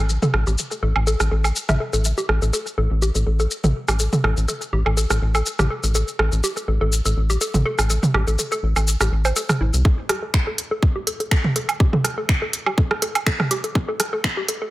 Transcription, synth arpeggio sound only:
0.23 A4
0.47 G4
0.71 A4
0.83 A4
1.07 A4
1.31 A4
1.45 A4
1.69 E5
1.80 A4
1.93 A4
2.18 G4
2.29 A4
2.42 A4
2.53 A4
2.78 A4
3.02 G4
3.15 A4
3.27 A4
3.40 A4
3.64 A4
3.88 G4
4.00 A4
4.13 A4
4.24 A4
4.48 A4
4.73 G4
4.86 A4
4.97 A4
5.10 A4
5.35 A4
5.59 G4
5.70 A4
5.84 A4
5.95 A4
6.19 A4
6.44 G4
6.57 A4
6.68 A4
6.81 A4
7.05 A4
7.30 G4
7.41 A4
7.54 A4
7.66 A4
7.90 A4
8.14 G4
8.27 A4
8.39 A4
8.52 A4
8.76 A4
9.01 G4
9.25 C5
9.36 A4
9.61 E4
9.85 A4
10.09 G4
10.22 A4
10.34 A4
10.47 A4
10.71 A4
10.96 G4
11.07 A4
11.20 A4
11.31 A4
11.56 A4
11.80 G4
11.93 A4
12.05 A4
12.18 A4
12.42 A4
12.66 G4
12.78 A4
12.91 A4
13.02 A4
13.27 A4
13.51 G4
13.64 A4
13.75 A4
13.88 A4
14.13 A4
14.37 G4
14.49 A4
14.62 A4

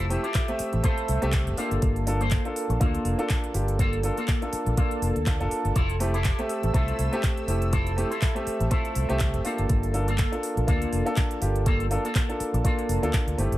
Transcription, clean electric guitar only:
0.23 E4 F4 G4
0.73 muted clean electric guitar stroke
0.84 E4 F4 C5
1.57 A#3 F4 A4
2.20 A#3 F4 C5
2.69 muted clean electric guitar stroke
2.81 A#3 F4 A4
3.79 A#3 F4 A4
4.17 A#3 F4 A4
4.67 muted clean electric guitar stroke
4.77 A#3 F4 A4
5.75 E4 F4 A4
6.14 E4 F4 G4
6.63 muted clean electric guitar stroke
6.74 E4 F4 A4
7.73 E4 F4 A4
8.11 E4 F4 A4
8.60 muted clean electric guitar stroke
8.71 E4 F4 A4
9.45 A#3 F4 A4
10.08 A#3 F4 A4
10.57 muted clean electric guitar stroke
10.68 A#3 F4 A4
11.66 A#3 F4 A4
12.04 A#3 F4 A4
12.54 muted clean electric guitar stroke
12.65 A#3 F4 A4

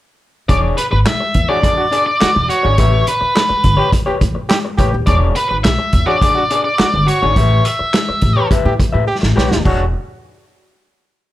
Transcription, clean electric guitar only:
0.49 D4 G#4 C#5
0.92 muted clean electric guitar stroke
1.06 muted clean electric guitar stroke
1.20 muted clean electric guitar stroke
1.49 D4 G#4 C#5
1.62 D4 G#4 D5
1.77 muted clean electric guitar stroke
1.91 D4 G#4 D5
2.06 muted clean electric guitar stroke
2.20 muted clean electric guitar stroke
2.35 muted clean electric guitar stroke
2.63 D4 G#4 C#5
2.78 G4 B4 E5
3.21 muted clean electric guitar stroke
3.35 muted clean electric guitar stroke
3.49 muted clean electric guitar stroke
3.77 G4 B4 C#5
3.92 muted clean electric guitar stroke
4.06 G4 B4 C#5
4.21 muted clean electric guitar stroke
4.35 muted clean electric guitar stroke
4.50 muted clean electric guitar stroke
4.65 muted clean electric guitar stroke
4.78 G4 B4 C#5
4.93 muted clean electric guitar stroke
5.08 D4 G#4 C#5
5.50 muted clean electric guitar stroke
5.65 muted clean electric guitar stroke
5.79 muted clean electric guitar stroke
6.07 D4 G#4 C#5
6.22 D4 G#4 D5
6.36 muted clean electric guitar stroke
6.51 D4 G#4 D5
6.65 muted clean electric guitar stroke
6.81 muted clean electric guitar stroke
6.94 muted clean electric guitar stroke
7.22 D4 G#4 C#5
7.36 G4 B4 E5
7.79 muted clean electric guitar stroke
7.94 muted clean electric guitar stroke
8.09 muted clean electric guitar stroke
8.37 G4 B4 C#5
8.51 G4 B4 E5
8.79 muted clean electric guitar stroke
8.92 G4 B4 E5
9.07 muted clean electric guitar stroke
9.22 muted clean electric guitar stroke
9.36 G4 B4 C#5
9.51 muted clean electric guitar stroke
9.65 D4 G#4 C#5

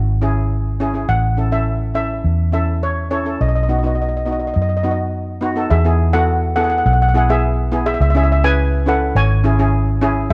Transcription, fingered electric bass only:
Already playing: G#1
1.09 A1
2.24 E2
3.41 B1
4.56 F#2
5.71 E2
6.86 B1
8.00 C#2
9.15 G#1

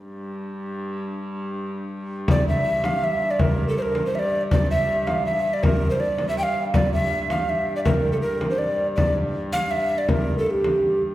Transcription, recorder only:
2.31 D5
2.49 E5
2.85 F5
3.04 E5
3.31 D5
3.40 A#4
3.68 A4
3.78 C5
3.82 A#4
4.06 C5
4.15 D5 E5
4.52 D5
4.71 E5
5.07 F5
5.26 E5
5.54 D5
5.63 A#4
5.90 C5
6.00 D5
6.29 E5
6.38 G5
6.43 F5
6.74 D5
6.94 E5
7.31 F5
7.49 E5
7.76 D5
7.85 A#4
8.12 A4
8.22 A#4
8.50 C5
8.58 D5
8.96 D5
9.53 F5
9.71 E5
9.98 D5
10.10 A#4
10.38 A4
10.47 G4 A4

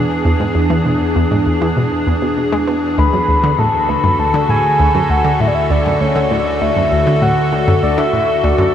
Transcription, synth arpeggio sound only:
0.25 E2
0.40 G#2
0.55 E2
0.70 E3
0.86 B2
1.16 E2
1.31 G#2
1.47 E2
1.62 E3
1.77 B2
2.07 E2
2.22 B2
2.37 B2
2.52 G#3
2.67 B3
2.98 D2
3.13 F#2
3.28 D2
3.44 D3
3.59 A2
3.89 D2
4.04 F#2
4.19 D2
4.34 D3
4.49 A2
4.80 D2
4.95 F#2
5.10 D2
5.25 D3
5.40 A2
5.70 D2
5.86 F#2
6.01 D2
6.16 D3
6.31 A2
6.61 D2
6.76 F#2
6.92 D2
7.07 D3
7.22 A2
7.53 D2
7.68 F#2
7.83 D2
7.98 D3
8.13 A2
8.44 D2
8.58 F#2

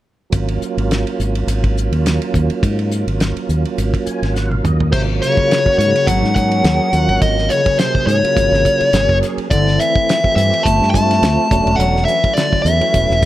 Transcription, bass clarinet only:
4.93 C3
5.22 C#3
5.81 C#3
6.08 F#3
6.37 F#3
7.22 D#3
7.53 C#3
7.81 C3
8.10 C#3
9.52 D3
9.80 E3
10.36 E3
10.64 A3
10.93 A3
11.79 F#3
12.07 E3
12.35 D3
12.64 E3

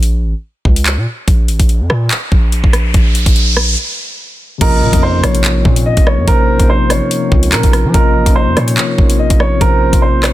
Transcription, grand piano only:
4.61 A#4
5.03 C5
5.24 C#5
5.86 D#5
6.07 C#5
6.27 A#4
6.69 C5
6.91 C#5
7.52 A#4
7.94 A#4
8.36 C5
8.57 C#5
9.19 D#5
9.40 C#5
9.61 A#4
10.02 C5
10.24 C#5

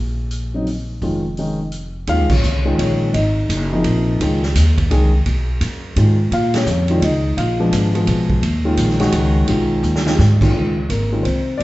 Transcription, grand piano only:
0.54 C#3 F#3 C4 D#4
1.03 D#3 G#3 C#4 F4
1.39 D#3 G#3 C#4 D#4
2.08 D#3 G#3 C#4 F4 F5
2.30 C#4 C#5
2.65 D#3 G#3 C#4 F4
2.78 C#4 C#5
3.14 D#4 D#5
3.72 C3 F3 A#3 D#4
4.21 D#3 G#3 C#4 F4
4.91 D#3 G#3 C#4 G#4
5.97 D#3 G#3 C#4 F4
6.33 F4 F5
6.55 C#4 C#5
6.90 D#3 G#3 C#4 F4
6.97 D5
7.03 D#4 D#5
7.37 F4 F5
7.60 F3 G#3 B3 D4
7.95 F3 G#3 B3 F4
8.65 D#3 G#3 C#4 F4
9.00 D#3 G#3 C#4 F#4
9.48 D#3 G#3 C#4 F4
10.06 D#3 G#3 C#4 F4
10.42 A#2 D#3 G#3 C#4 F4
10.55 D#3 G#3 C#4 F4
10.90 A#3 A#4
11.12 D#3 G#3 C#4 F4
11.23 C4 C5
11.57 D5

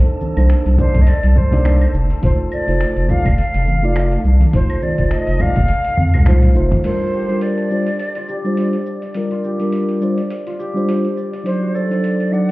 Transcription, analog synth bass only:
0.37 C2
0.66 C2
0.95 C2
1.23 C2
1.94 F1
2.23 F1
2.68 F1
2.97 F1
3.25 F1
3.55 F1
4.25 C2
4.54 F1
4.99 F1
5.28 F1
5.56 F1
5.98 F2
6.14 C2
6.56 F1

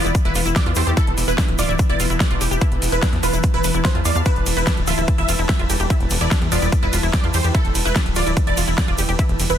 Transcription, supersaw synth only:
Already playing: D5
0.25 B4
0.56 D5
0.77 C5
0.97 A4
1.28 B4
1.59 D5
1.90 D5
2.20 D5
2.92 B4
3.23 B4
3.54 B4
3.85 C5
4.05 D5
4.26 B4
4.57 B4
4.87 E5
5.18 E5
5.49 E5
6.21 D5
6.52 D5
6.83 B4
7.13 D5
7.34 C5
7.55 A4
7.85 B4
8.16 D5
8.47 D5
8.78 D5
9.50 B4

